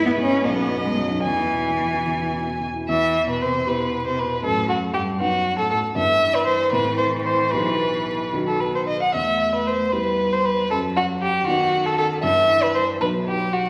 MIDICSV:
0, 0, Header, 1, 4, 480
1, 0, Start_track
1, 0, Key_signature, 1, "minor"
1, 0, Tempo, 538600
1, 1110, Time_signature, 6, 3, 24, 8
1, 3048, Tempo, 509771
1, 5928, Tempo, 532387
1, 8808, Tempo, 514580
1, 12560, End_track
2, 0, Start_track
2, 0, Title_t, "Violin"
2, 0, Program_c, 0, 40
2, 0, Note_on_c, 0, 71, 61
2, 397, Note_on_c, 0, 75, 68
2, 411, Note_off_c, 0, 71, 0
2, 1108, Note_off_c, 0, 75, 0
2, 1113, Note_on_c, 0, 80, 49
2, 2368, Note_off_c, 0, 80, 0
2, 2575, Note_on_c, 0, 76, 59
2, 2905, Note_off_c, 0, 76, 0
2, 2937, Note_on_c, 0, 71, 53
2, 3046, Note_on_c, 0, 72, 56
2, 3061, Note_off_c, 0, 71, 0
2, 3294, Note_on_c, 0, 71, 59
2, 3308, Note_off_c, 0, 72, 0
2, 3652, Note_off_c, 0, 71, 0
2, 3658, Note_on_c, 0, 72, 51
2, 3775, Note_on_c, 0, 71, 57
2, 3789, Note_off_c, 0, 72, 0
2, 4011, Note_off_c, 0, 71, 0
2, 4016, Note_on_c, 0, 69, 67
2, 4239, Note_off_c, 0, 69, 0
2, 4245, Note_on_c, 0, 66, 58
2, 4320, Note_off_c, 0, 66, 0
2, 4477, Note_on_c, 0, 67, 60
2, 4553, Note_off_c, 0, 67, 0
2, 4728, Note_on_c, 0, 66, 73
2, 5079, Note_off_c, 0, 66, 0
2, 5088, Note_on_c, 0, 69, 54
2, 5197, Note_off_c, 0, 69, 0
2, 5203, Note_on_c, 0, 69, 73
2, 5278, Note_off_c, 0, 69, 0
2, 5451, Note_on_c, 0, 76, 74
2, 5809, Note_on_c, 0, 71, 71
2, 5823, Note_off_c, 0, 76, 0
2, 5906, Note_off_c, 0, 71, 0
2, 5911, Note_on_c, 0, 72, 70
2, 6139, Note_off_c, 0, 72, 0
2, 6145, Note_on_c, 0, 71, 77
2, 6370, Note_off_c, 0, 71, 0
2, 6376, Note_on_c, 0, 72, 71
2, 6448, Note_off_c, 0, 72, 0
2, 6619, Note_on_c, 0, 72, 66
2, 6857, Note_on_c, 0, 71, 72
2, 6871, Note_off_c, 0, 72, 0
2, 7594, Note_off_c, 0, 71, 0
2, 7725, Note_on_c, 0, 69, 59
2, 7843, Note_on_c, 0, 71, 53
2, 7856, Note_off_c, 0, 69, 0
2, 7969, Note_off_c, 0, 71, 0
2, 7977, Note_on_c, 0, 72, 46
2, 8025, Note_off_c, 0, 72, 0
2, 8090, Note_on_c, 0, 75, 58
2, 8212, Note_off_c, 0, 75, 0
2, 8221, Note_on_c, 0, 78, 60
2, 8328, Note_off_c, 0, 78, 0
2, 8333, Note_on_c, 0, 76, 56
2, 8682, Note_off_c, 0, 76, 0
2, 8697, Note_on_c, 0, 71, 55
2, 8807, Note_on_c, 0, 72, 58
2, 8821, Note_off_c, 0, 71, 0
2, 9043, Note_on_c, 0, 71, 64
2, 9057, Note_off_c, 0, 72, 0
2, 9414, Note_on_c, 0, 72, 57
2, 9428, Note_off_c, 0, 71, 0
2, 9535, Note_on_c, 0, 71, 69
2, 9549, Note_off_c, 0, 72, 0
2, 9767, Note_off_c, 0, 71, 0
2, 9772, Note_on_c, 0, 69, 72
2, 9847, Note_off_c, 0, 69, 0
2, 10014, Note_on_c, 0, 66, 72
2, 10088, Note_off_c, 0, 66, 0
2, 10249, Note_on_c, 0, 67, 68
2, 10476, Note_off_c, 0, 67, 0
2, 10481, Note_on_c, 0, 66, 75
2, 10847, Note_on_c, 0, 69, 66
2, 10861, Note_off_c, 0, 66, 0
2, 10955, Note_off_c, 0, 69, 0
2, 10960, Note_on_c, 0, 69, 82
2, 11035, Note_off_c, 0, 69, 0
2, 11197, Note_on_c, 0, 76, 77
2, 11566, Note_on_c, 0, 71, 65
2, 11580, Note_off_c, 0, 76, 0
2, 11671, Note_off_c, 0, 71, 0
2, 11676, Note_on_c, 0, 72, 68
2, 11751, Note_off_c, 0, 72, 0
2, 11920, Note_on_c, 0, 71, 69
2, 11994, Note_off_c, 0, 71, 0
2, 12171, Note_on_c, 0, 67, 58
2, 12407, Note_on_c, 0, 66, 49
2, 12421, Note_off_c, 0, 67, 0
2, 12560, Note_off_c, 0, 66, 0
2, 12560, End_track
3, 0, Start_track
3, 0, Title_t, "Grand piano"
3, 0, Program_c, 1, 0
3, 0, Control_c, 1, 64, 127
3, 0, Note_on_c, 1, 44, 67
3, 0, Note_on_c, 1, 56, 50
3, 0, Note_on_c, 1, 59, 52
3, 39, Note_off_c, 1, 59, 0
3, 39, Note_on_c, 1, 59, 50
3, 115, Note_off_c, 1, 56, 0
3, 152, Note_on_c, 1, 56, 54
3, 228, Note_off_c, 1, 59, 0
3, 260, Note_on_c, 1, 64, 50
3, 343, Note_off_c, 1, 56, 0
3, 371, Note_off_c, 1, 44, 0
3, 385, Note_off_c, 1, 64, 0
3, 385, Note_on_c, 1, 35, 66
3, 410, Control_c, 1, 64, 0
3, 506, Note_on_c, 1, 59, 48
3, 560, Control_c, 1, 64, 127
3, 618, Note_on_c, 1, 42, 47
3, 697, Note_off_c, 1, 59, 0
3, 741, Note_on_c, 1, 59, 43
3, 814, Note_off_c, 1, 42, 0
3, 859, Note_on_c, 1, 42, 44
3, 936, Note_off_c, 1, 59, 0
3, 987, Note_on_c, 1, 63, 41
3, 1057, Note_off_c, 1, 42, 0
3, 1085, Note_off_c, 1, 35, 0
3, 1110, Note_off_c, 1, 63, 0
3, 1114, Note_on_c, 1, 40, 53
3, 1128, Control_c, 1, 64, 0
3, 1241, Note_on_c, 1, 59, 39
3, 1278, Control_c, 1, 64, 127
3, 1361, Note_on_c, 1, 47, 35
3, 1435, Note_off_c, 1, 59, 0
3, 1484, Note_on_c, 1, 59, 36
3, 1556, Note_off_c, 1, 47, 0
3, 1605, Note_on_c, 1, 47, 32
3, 1678, Note_off_c, 1, 59, 0
3, 1727, Note_on_c, 1, 64, 30
3, 1799, Note_off_c, 1, 47, 0
3, 1824, Note_off_c, 1, 40, 0
3, 1838, Note_on_c, 1, 40, 39
3, 1920, Note_off_c, 1, 64, 0
3, 1949, Note_on_c, 1, 59, 33
3, 2069, Note_on_c, 1, 47, 32
3, 2154, Note_off_c, 1, 59, 0
3, 2194, Note_on_c, 1, 59, 34
3, 2276, Note_off_c, 1, 47, 0
3, 2313, Note_on_c, 1, 47, 31
3, 2400, Note_off_c, 1, 59, 0
3, 2440, Note_on_c, 1, 64, 33
3, 2519, Note_off_c, 1, 47, 0
3, 2551, Note_off_c, 1, 40, 0
3, 2569, Note_off_c, 1, 64, 0
3, 2571, Note_on_c, 1, 40, 47
3, 2597, Control_c, 1, 64, 0
3, 2728, Control_c, 1, 64, 127
3, 3267, Note_off_c, 1, 40, 0
3, 3278, Note_on_c, 1, 59, 34
3, 3281, Note_on_c, 1, 64, 33
3, 3282, Note_on_c, 1, 67, 38
3, 3969, Note_off_c, 1, 59, 0
3, 3970, Note_off_c, 1, 64, 0
3, 3971, Note_off_c, 1, 67, 0
3, 3997, Note_on_c, 1, 42, 48
3, 4029, Control_c, 1, 64, 0
3, 4156, Control_c, 1, 64, 127
3, 4697, Note_off_c, 1, 42, 0
3, 4720, Note_on_c, 1, 59, 35
3, 4723, Note_on_c, 1, 71, 43
3, 4724, Note_on_c, 1, 63, 36
3, 5404, Note_off_c, 1, 59, 0
3, 5406, Note_off_c, 1, 63, 0
3, 5406, Note_off_c, 1, 71, 0
3, 5431, Note_on_c, 1, 59, 43
3, 5435, Note_on_c, 1, 43, 63
3, 5435, Note_on_c, 1, 64, 41
3, 5441, Note_on_c, 1, 71, 44
3, 5465, Control_c, 1, 64, 0
3, 5594, Control_c, 1, 64, 127
3, 6120, Note_off_c, 1, 59, 0
3, 6122, Note_off_c, 1, 64, 0
3, 6125, Note_off_c, 1, 71, 0
3, 6137, Note_off_c, 1, 43, 0
3, 6152, Note_on_c, 1, 45, 54
3, 6155, Note_on_c, 1, 60, 41
3, 6159, Note_on_c, 1, 64, 39
3, 6171, Note_on_c, 1, 69, 40
3, 6182, Control_c, 1, 64, 0
3, 6325, Control_c, 1, 64, 127
3, 6838, Note_off_c, 1, 60, 0
3, 6840, Note_off_c, 1, 64, 0
3, 6846, Note_off_c, 1, 69, 0
3, 6851, Note_off_c, 1, 45, 0
3, 6871, Note_on_c, 1, 35, 53
3, 6871, Note_on_c, 1, 59, 40
3, 6878, Note_on_c, 1, 64, 37
3, 6882, Note_on_c, 1, 67, 37
3, 6897, Control_c, 1, 64, 0
3, 7071, Control_c, 1, 64, 127
3, 7565, Note_off_c, 1, 59, 0
3, 7569, Note_off_c, 1, 64, 0
3, 7570, Note_off_c, 1, 67, 0
3, 7579, Note_off_c, 1, 35, 0
3, 7595, Note_on_c, 1, 35, 42
3, 7599, Note_on_c, 1, 59, 30
3, 7602, Note_on_c, 1, 63, 31
3, 7608, Note_on_c, 1, 66, 34
3, 7623, Control_c, 1, 64, 0
3, 7773, Control_c, 1, 64, 127
3, 8298, Note_off_c, 1, 59, 0
3, 8299, Note_off_c, 1, 63, 0
3, 8302, Note_off_c, 1, 66, 0
3, 8310, Note_off_c, 1, 35, 0
3, 8326, Note_on_c, 1, 40, 47
3, 8355, Control_c, 1, 64, 0
3, 8507, Control_c, 1, 64, 127
3, 9024, Note_off_c, 1, 40, 0
3, 9043, Note_on_c, 1, 64, 36
3, 9045, Note_on_c, 1, 59, 36
3, 9045, Note_on_c, 1, 67, 39
3, 9729, Note_off_c, 1, 64, 0
3, 9730, Note_off_c, 1, 59, 0
3, 9730, Note_off_c, 1, 67, 0
3, 9767, Note_on_c, 1, 42, 56
3, 9788, Control_c, 1, 64, 0
3, 9929, Control_c, 1, 64, 127
3, 10461, Note_off_c, 1, 42, 0
3, 10486, Note_on_c, 1, 59, 48
3, 10490, Note_on_c, 1, 66, 54
3, 10491, Note_on_c, 1, 63, 48
3, 11156, Note_off_c, 1, 59, 0
3, 11158, Note_off_c, 1, 63, 0
3, 11158, Note_off_c, 1, 66, 0
3, 11194, Note_on_c, 1, 43, 67
3, 11197, Note_on_c, 1, 59, 41
3, 11198, Note_on_c, 1, 64, 44
3, 11209, Control_c, 1, 64, 0
3, 11356, Control_c, 1, 64, 127
3, 11879, Note_off_c, 1, 59, 0
3, 11879, Note_off_c, 1, 64, 0
3, 11893, Note_off_c, 1, 43, 0
3, 11911, Note_on_c, 1, 35, 48
3, 11918, Note_on_c, 1, 59, 38
3, 11922, Note_on_c, 1, 63, 34
3, 11925, Note_on_c, 1, 66, 37
3, 11931, Control_c, 1, 64, 0
3, 12084, Control_c, 1, 64, 127
3, 12560, Note_off_c, 1, 35, 0
3, 12560, Note_off_c, 1, 59, 0
3, 12560, Note_off_c, 1, 63, 0
3, 12560, Note_off_c, 1, 66, 0
3, 12560, End_track
4, 0, Start_track
4, 0, Title_t, "Cello"
4, 0, Program_c, 2, 42
4, 52, Note_on_c, 2, 59, 79
4, 97, Note_off_c, 2, 59, 0
4, 174, Note_on_c, 2, 61, 91
4, 389, Note_off_c, 2, 61, 0
4, 394, Note_on_c, 2, 59, 76
4, 758, Note_on_c, 2, 56, 66
4, 771, Note_off_c, 2, 59, 0
4, 877, Note_on_c, 2, 54, 57
4, 891, Note_off_c, 2, 56, 0
4, 1131, Note_on_c, 2, 52, 72
4, 1144, Note_off_c, 2, 54, 0
4, 2346, Note_off_c, 2, 52, 0
4, 2574, Note_on_c, 2, 52, 69
4, 2904, Note_off_c, 2, 52, 0
4, 2921, Note_on_c, 2, 47, 51
4, 3034, Note_on_c, 2, 48, 57
4, 3047, Note_off_c, 2, 47, 0
4, 3278, Note_off_c, 2, 48, 0
4, 3283, Note_on_c, 2, 47, 45
4, 3642, Note_off_c, 2, 47, 0
4, 3647, Note_on_c, 2, 48, 47
4, 3770, Note_on_c, 2, 47, 49
4, 3785, Note_off_c, 2, 48, 0
4, 3999, Note_off_c, 2, 47, 0
4, 4004, Note_on_c, 2, 45, 68
4, 4243, Note_on_c, 2, 42, 53
4, 4257, Note_off_c, 2, 45, 0
4, 4472, Note_off_c, 2, 42, 0
4, 4477, Note_on_c, 2, 43, 58
4, 4719, Note_on_c, 2, 42, 57
4, 4733, Note_off_c, 2, 43, 0
4, 5087, Note_on_c, 2, 45, 55
4, 5101, Note_off_c, 2, 42, 0
4, 5193, Note_off_c, 2, 45, 0
4, 5199, Note_on_c, 2, 45, 56
4, 5274, Note_off_c, 2, 45, 0
4, 5437, Note_on_c, 2, 52, 61
4, 7604, Note_on_c, 2, 51, 45
4, 7618, Note_off_c, 2, 52, 0
4, 8152, Note_off_c, 2, 51, 0
4, 8332, Note_on_c, 2, 57, 50
4, 9045, Note_on_c, 2, 55, 42
4, 9059, Note_off_c, 2, 57, 0
4, 9764, Note_off_c, 2, 55, 0
4, 9769, Note_on_c, 2, 54, 56
4, 10470, Note_off_c, 2, 54, 0
4, 10478, Note_on_c, 2, 51, 57
4, 11191, Note_on_c, 2, 52, 60
4, 11205, Note_off_c, 2, 51, 0
4, 11909, Note_on_c, 2, 54, 48
4, 11923, Note_off_c, 2, 52, 0
4, 12560, Note_off_c, 2, 54, 0
4, 12560, End_track
0, 0, End_of_file